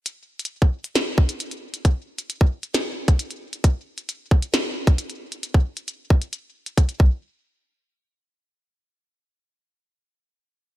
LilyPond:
\new DrumStaff \with { instrumentName = "Drums" } \drummode { \time 4/4 \tempo 4 = 134 hh8. hh32 hh32 r16 bd8 hh16 <hh sn>8 bd16 hh16 hh16 hh8 hh16 | <hh bd>8. hh16 hh16 bd8 hh16 <hh sn>8. <hh bd>16 hh16 hh8 hh16 | <hh bd>8. hh16 hh8 bd16 hh16 <hh sn>8. <hh bd>16 hh16 hh8 hh16 | hh16 bd8 hh16 hh8 bd16 hh16 hh8. hh16 <hh bd>16 hh16 bd8 |
r4 r4 r4 r4 | r4 r4 r4 r4 | }